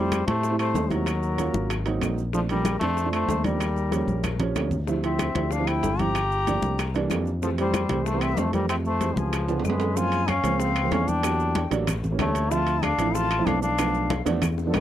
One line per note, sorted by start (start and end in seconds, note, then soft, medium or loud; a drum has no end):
0.00 0.22 F2 medium
0.00 0.18 G3 medium
0.00 0.25 G3 medium
0.00 0.18 A3 medium
0.00 0.18 C4 medium
0.00 0.18 E4 medium
0.00 0.26 C5 medium
0.12 high bongo medium
0.12 high conga medium
0.12 high timbale medium
0.12 low timbale medium
0.12 claves medium
0.12 maracas medium
0.26 0.72 A2 medium
0.26 0.43 G3 medium
0.26 0.44 A3 medium
0.26 0.57 A3 medium
0.26 0.44 C4 medium
0.26 0.44 E4 medium
0.26 0.58 C5 medium
0.26 high bongo soft
0.26 high conga medium
0.26 high timbale medium
0.26 maracas soft
0.43 high bongo medium
0.43 high conga soft
0.43 maracas medium
0.50 0.79 G3 medium
0.50 0.79 A3 medium
0.50 0.79 C4 medium
0.50 0.79 E4 medium
0.59 0.92 A3 medium
0.59 0.94 C5 medium
0.59 high bongo soft
0.59 high conga soft
0.59 high timbale medium
0.59 claves medium
0.59 maracas soft
0.74 1.48 D#2 medium
0.74 high bongo soft
0.74 low bongo medium
0.74 high conga medium
0.74 low timbale medium
0.74 maracas medium
0.90 1.86 F#3 medium
0.90 1.06 G3 medium
0.90 1.06 A3 medium
0.90 1.07 C4 medium
0.90 1.07 E4 medium
0.90 1.87 A#4 medium
0.90 high conga medium
0.90 high timbale medium
0.90 maracas soft
1.06 high bongo medium
1.06 high conga soft
1.06 high timbale medium
1.06 claves medium
1.06 maracas medium
1.22 high bongo soft
1.22 high conga soft
1.22 maracas soft
1.38 1.70 F#3 medium
1.38 1.70 A#3 medium
1.38 1.71 C#4 medium
1.38 1.71 F4 medium
1.38 high bongo medium
1.38 high conga soft
1.38 high timbale medium
1.38 low timbale soft
1.38 maracas medium
1.54 1.98 G#1 medium
1.54 high bongo soft
1.54 high conga medium
1.54 maracas soft
1.70 high bongo medium
1.70 high conga soft
1.70 high timbale medium
1.70 claves medium
1.70 maracas medium
1.86 2.19 F#3 medium
1.86 2.20 A#3 medium
1.86 2.20 C4 medium
1.86 2.20 D#4 medium
1.86 high bongo soft
1.86 high conga soft
1.86 high timbale medium
1.86 maracas soft
2.01 2.75 A#1 medium
2.01 high bongo soft
2.01 low bongo medium
2.01 high conga medium
2.01 high timbale medium
2.01 low timbale medium
2.01 claves medium
2.01 maracas medium
2.18 high conga soft
2.18 maracas soft
2.33 2.45 F3 medium
2.33 2.41 F3 medium
2.33 2.45 A3 medium
2.33 2.45 C4 medium
2.33 2.45 D4 medium
2.33 2.40 A4 medium
2.33 high bongo medium
2.33 high conga soft
2.33 maracas medium
2.49 2.72 F3 medium
2.49 2.79 G3 medium
2.49 2.72 A3 medium
2.49 2.73 C4 medium
2.49 2.73 D4 medium
2.49 2.79 A#4 medium
2.49 high bongo soft
2.49 high conga soft
2.49 high timbale medium
2.49 maracas soft
2.65 high bongo medium
2.65 high conga medium
2.65 high timbale medium
2.65 low timbale soft
2.65 claves medium
2.65 maracas medium
2.79 3.26 F2 medium
2.79 2.98 F3 medium
2.79 3.10 A3 medium
2.79 2.99 A3 medium
2.79 2.99 C4 medium
2.79 2.99 D4 medium
2.79 3.11 C5 medium
2.79 high bongo soft
2.79 high conga medium
2.79 high timbale medium
2.79 maracas soft
2.97 high bongo medium
2.97 high conga soft
2.97 maracas medium
3.04 3.33 F3 medium
3.04 3.33 A3 medium
3.04 3.33 C4 medium
3.04 3.33 D4 medium
3.12 3.46 A3 medium
3.12 3.46 C5 medium
3.12 high bongo soft
3.12 high conga soft
3.12 high timbale medium
3.12 claves medium
3.12 maracas soft
3.28 4.03 D#2 medium
3.28 high bongo soft
3.28 low bongo medium
3.28 high conga medium
3.28 low timbale medium
3.28 maracas medium
3.44 3.60 F3 medium
3.44 4.40 G3 medium
3.44 3.61 A3 medium
3.44 3.61 C4 medium
3.44 3.61 D4 medium
3.44 4.40 A#4 medium
3.44 high conga medium
3.44 high timbale medium
3.44 maracas soft
3.60 high bongo medium
3.60 high conga soft
3.60 high timbale medium
3.60 claves medium
3.60 maracas medium
3.76 high bongo soft
3.76 high conga soft
3.76 maracas soft
3.91 4.25 F3 medium
3.91 4.25 G3 medium
3.91 4.26 A#3 medium
3.91 4.26 C#4 medium
3.91 high bongo medium
3.91 high conga medium
3.91 high timbale medium
3.91 low timbale soft
3.91 maracas medium
4.07 4.52 A#1 medium
4.07 high bongo soft
4.07 high conga medium
4.07 maracas soft
4.24 high bongo medium
4.24 high conga medium
4.24 high timbale medium
4.24 claves medium
4.24 maracas medium
4.39 4.73 F3 medium
4.39 4.73 G3 medium
4.39 4.74 A#3 medium
4.39 4.74 C#4 loud
4.39 high bongo soft
4.39 low conga medium
4.39 high timbale medium
4.39 maracas soft
4.55 5.30 D2 medium
4.55 high bongo soft
4.55 low bongo medium
4.55 high timbale medium
4.55 low timbale medium
4.55 claves medium
4.55 maracas medium
4.71 low conga medium
4.71 maracas soft
4.87 4.99 F3 medium
4.87 4.99 G3 medium
4.87 4.99 C4 medium
4.87 5.00 E4 medium
4.87 high bongo medium
4.87 high conga soft
4.87 maracas medium
5.03 5.26 F3 medium
5.03 5.26 G3 medium
5.03 5.26 C4 medium
5.03 5.54 C4 medium
5.03 5.26 E4 medium
5.03 5.53 E5 medium
5.03 high bongo soft
5.03 high conga soft
5.03 high timbale medium
5.03 maracas soft
5.19 high bongo medium
5.19 high conga medium
5.19 high timbale medium
5.19 low timbale medium
5.19 claves medium
5.19 maracas medium
5.35 5.80 D2 medium
5.35 5.52 F3 medium
5.35 5.52 G3 medium
5.35 5.52 C4 medium
5.35 5.53 E4 medium
5.35 high bongo soft
5.35 high conga medium
5.35 high timbale medium
5.35 maracas soft
5.51 5.69 D4 medium
5.51 5.69 F5 medium
5.51 high bongo medium
5.51 high conga soft
5.51 maracas medium
5.59 5.87 F3 medium
5.59 5.87 G3 medium
5.59 5.88 C4 medium
5.59 5.88 E4 medium
5.67 6.01 E4 medium
5.67 6.02 G5 medium
5.67 high bongo soft
5.67 high conga soft
5.67 high timbale medium
5.67 claves medium
5.67 maracas soft
5.82 6.57 G1 medium
5.82 high bongo soft
5.82 low bongo medium
5.82 high conga medium
5.82 low timbale medium
5.82 maracas medium
5.99 6.15 F3 medium
5.99 6.15 G3 medium
5.99 6.15 C4 medium
5.99 6.16 E4 medium
5.99 6.95 G4 medium
5.99 6.95 A#5 medium
5.99 high conga medium
5.99 high timbale medium
5.99 maracas soft
6.15 high bongo medium
6.15 high conga soft
6.15 high timbale medium
6.15 claves medium
6.15 maracas medium
6.31 high bongo soft
6.31 high conga soft
6.31 maracas soft
6.47 6.79 F3 medium
6.47 6.79 A3 medium
6.47 6.79 A#3 medium
6.47 6.79 D4 medium
6.47 high bongo medium
6.47 high conga soft
6.47 high timbale medium
6.47 low timbale soft
6.47 maracas medium
6.62 7.07 C2 medium
6.62 high bongo soft
6.62 high conga medium
6.62 maracas soft
6.78 high bongo medium
6.78 high conga soft
6.78 high timbale medium
6.78 claves medium
6.78 maracas medium
6.94 7.28 E3 loud
6.94 7.28 G3 medium
6.94 7.29 A#3 medium
6.94 7.29 D4 loud
6.94 high bongo soft
6.94 high conga soft
6.94 high timbale medium
6.94 maracas soft
7.10 7.84 F2 medium
7.10 high bongo soft
7.10 low bongo medium
7.10 high conga medium
7.10 high timbale medium
7.10 low timbale medium
7.10 claves medium
7.10 maracas medium
7.26 high conga soft
7.26 maracas soft
7.42 7.53 E3 medium
7.42 7.50 F3 medium
7.42 7.54 G3 medium
7.42 7.54 A3 medium
7.42 7.54 C4 medium
7.42 7.50 A4 medium
7.42 high bongo medium
7.42 high conga soft
7.42 maracas medium
7.58 7.80 E3 medium
7.58 7.81 G3 medium
7.58 8.07 G3 medium
7.58 7.81 A3 medium
7.58 7.81 C4 medium
7.58 8.07 C5 medium
7.58 high bongo soft
7.58 high conga soft
7.58 high timbale medium
7.58 maracas soft
7.74 high bongo medium
7.74 high conga medium
7.74 high timbale medium
7.74 low timbale medium
7.74 claves medium
7.74 maracas medium
7.89 8.34 C2 medium
7.89 8.07 E3 medium
7.89 8.07 G3 medium
7.89 8.07 A3 medium
7.89 8.07 C4 medium
7.89 high bongo soft
7.89 high conga medium
7.89 high timbale medium
7.89 maracas soft
8.05 8.23 A3 medium
8.05 8.24 C5 medium
8.05 high bongo medium
8.05 high conga soft
8.05 maracas medium
8.13 8.41 E3 medium
8.13 8.41 G3 medium
8.13 8.42 A3 medium
8.13 8.42 C4 medium
8.21 8.40 C4 medium
8.21 8.40 E5 medium
8.21 high bongo soft
8.21 high conga soft
8.21 high timbale medium
8.21 claves medium
8.21 maracas soft
8.37 9.11 F2 medium
8.37 8.53 A3 medium
8.37 8.54 C5 medium
8.37 high bongo soft
8.37 low bongo medium
8.37 high conga medium
8.37 low timbale medium
8.37 maracas medium
8.52 8.86 E3 medium
8.52 8.86 G3 medium
8.52 8.68 G3 medium
8.52 8.86 A3 medium
8.52 8.87 C4 medium
8.52 8.69 A#4 medium
8.52 high conga medium
8.52 high timbale medium
8.52 maracas soft
8.69 8.76 C4 medium
8.69 8.76 E5 medium
8.69 high bongo medium
8.69 high timbale medium
8.69 claves medium
8.69 maracas medium
8.85 9.18 A3 medium
8.85 9.20 C5 medium
8.85 high bongo soft
8.85 high conga soft
8.85 maracas soft
9.01 9.33 E3 medium
9.01 9.33 G3 medium
9.01 9.33 A3 medium
9.01 9.33 C4 medium
9.01 high bongo medium
9.01 high conga medium
9.01 high timbale medium
9.01 low timbale medium
9.01 maracas medium
9.16 9.61 C#2 medium
9.16 9.64 F3 medium
9.16 9.66 G#4 medium
9.16 high bongo soft
9.16 high conga medium
9.16 maracas soft
9.33 high bongo medium
9.33 high conga soft
9.33 high timbale medium
9.33 claves medium
9.33 maracas medium
9.48 9.82 D3 medium
9.48 9.82 F3 medium
9.48 9.83 G#3 medium
9.48 9.83 B3 medium
9.48 high bongo soft
9.48 high conga soft
9.48 high timbale medium
9.48 maracas soft
9.60 low timbale medium
9.64 10.38 F#2 medium
9.64 9.98 G#3 medium
9.64 9.99 B4 medium
9.64 high bongo soft
9.64 low bongo medium
9.64 high conga medium
9.64 claves medium
9.64 maracas medium
9.70 low timbale medium
9.80 high conga soft
9.80 low timbale medium
9.80 maracas soft
9.96 10.30 F3 medium
9.96 10.30 G#3 medium
9.96 10.30 A#3 medium
9.96 10.30 C4 medium
9.96 10.30 F4 loud
9.96 10.30 G#5 medium
9.96 high bongo medium
9.96 high conga soft
9.96 maracas medium
10.12 high bongo soft
10.12 high conga soft
10.12 high timbale medium
10.12 maracas soft
10.28 10.62 C#4 loud
10.28 10.60 F5 medium
10.28 high bongo medium
10.28 high conga medium
10.28 high timbale medium
10.28 low timbale medium
10.28 claves medium
10.28 maracas soft
10.43 10.88 C#2 medium
10.43 10.72 F3 medium
10.43 10.72 G#3 medium
10.43 10.72 A#3 medium
10.43 10.72 C4 medium
10.43 high bongo soft
10.43 high conga soft
10.43 high timbale medium
10.43 maracas medium
10.60 10.93 C4 medium
10.60 10.93 F5 medium
10.60 high bongo medium
10.60 high conga soft
10.60 maracas medium
10.76 high conga soft
10.76 high timbale medium
10.76 claves medium
10.76 maracas soft
10.83 11.11 F3 medium
10.83 11.12 G#3 medium
10.83 11.12 A#3 medium
10.83 11.12 C4 medium
10.91 11.65 E2 medium
10.91 11.10 C#4 medium
10.91 11.10 F5 medium
10.91 high bongo soft
10.91 low bongo medium
10.91 high conga medium
10.91 high timbale medium
10.91 low timbale medium
10.91 maracas soft
11.08 11.72 D4 medium
11.08 11.72 G5 medium
11.08 high bongo soft
11.08 high conga medium
11.08 maracas medium
11.23 11.57 F#3 medium
11.23 11.57 G3 medium
11.23 11.57 A#3 medium
11.23 11.57 D4 medium
11.23 high bongo medium
11.23 high conga soft
11.23 high timbale medium
11.23 claves medium
11.23 maracas medium
11.40 high bongo soft
11.40 high conga soft
11.40 maracas soft
11.55 high bongo medium
11.55 high conga medium
11.55 high timbale medium
11.55 low timbale medium
11.55 maracas soft
11.71 12.16 A1 medium
11.71 11.87 F#3 loud
11.71 11.87 G3 medium
11.71 11.88 A#3 medium
11.71 11.88 D4 loud
11.71 high bongo soft
11.71 high timbale medium
11.71 maracas medium
11.87 high bongo medium
11.87 high conga soft
11.87 low conga medium
11.87 high timbale medium
11.87 claves medium
11.87 maracas medium
12.04 high conga soft
12.04 low conga medium
12.04 maracas soft
12.11 12.39 E3 medium
12.11 12.39 G3 medium
12.11 12.39 A#3 medium
12.11 12.40 C#4 medium
12.19 12.93 D2 medium
12.19 12.53 A3 medium
12.19 12.53 C#5 medium
12.19 high bongo soft
12.19 low bongo medium
12.19 high conga medium
12.19 high timbale medium
12.19 low timbale medium
12.19 claves medium
12.19 maracas soft
12.35 high bongo soft
12.35 high conga soft
12.35 high timbale medium
12.35 maracas medium
12.51 12.84 F3 medium
12.51 12.85 A3 medium
12.51 12.85 C4 medium
12.51 12.84 F4 loud
12.51 12.85 E5 medium
12.51 12.84 A5 medium
12.51 high bongo medium
12.51 high conga soft
12.51 maracas medium
12.67 high bongo soft
12.67 high conga soft
12.67 high timbale medium
12.67 maracas soft
12.83 13.16 D4 loud
12.83 13.16 F5 medium
12.83 high bongo medium
12.83 high conga medium
12.83 high timbale medium
12.83 low timbale medium
12.83 claves medium
12.83 maracas soft
12.98 13.43 A1 medium
12.98 13.27 F3 medium
12.98 13.27 A3 medium
12.98 13.27 C4 medium
12.98 13.27 E4 loud
12.98 high bongo soft
12.98 high conga soft
12.98 high timbale medium
12.98 maracas medium
13.14 13.47 F4 loud
13.14 13.48 A5 medium
13.14 high bongo medium
13.14 high conga soft
13.14 maracas medium
13.31 high conga soft
13.31 high timbale medium
13.31 claves medium
13.31 maracas soft
13.38 13.66 F3 medium
13.38 13.67 A3 medium
13.38 13.67 C4 medium
13.38 13.67 E4 medium
13.45 14.21 B1 medium
13.45 13.61 D4 loud
13.45 13.62 F5 medium
13.45 high bongo soft
13.45 low bongo medium
13.45 high conga medium
13.45 high timbale medium
13.45 low timbale medium
13.45 maracas soft
13.62 14.22 D4 loud
13.62 14.22 F5 medium
13.62 high bongo soft
13.62 maracas medium
13.78 14.12 F3 medium
13.78 14.12 A3 medium
13.78 14.12 B3 medium
13.78 14.12 D4 medium
13.78 high bongo medium
13.78 high conga soft
13.78 high timbale loud
13.78 claves medium
13.78 maracas medium
13.94 high bongo soft
13.94 high conga soft
13.94 maracas soft
14.10 high bongo medium
14.10 high conga medium
14.10 high timbale medium
14.10 low timbale medium
14.10 maracas soft
14.25 14.71 E2 medium
14.25 14.42 F3 loud
14.25 14.42 A3 medium
14.25 14.42 B3 medium
14.25 14.42 D4 loud
14.25 high bongo medium
14.25 high timbale medium
14.25 maracas medium
14.42 high bongo medium
14.42 high conga soft
14.42 low conga medium
14.42 high timbale medium
14.42 claves medium
14.42 maracas medium
14.58 high bongo medium
14.58 high conga soft
14.58 maracas soft
14.66 14.80 F3 medium
14.66 14.76 F3 medium
14.66 14.80 G#3 medium
14.66 14.80 B3 medium
14.66 14.80 D4 medium
14.66 14.77 A4 medium
14.73 14.80 A1 medium
14.73 14.80 G#3 medium
14.73 14.80 B4 medium
14.73 low bongo loud
14.73 high conga medium
14.73 high timbale loud
14.73 low timbale medium
14.73 claves medium
14.73 maracas soft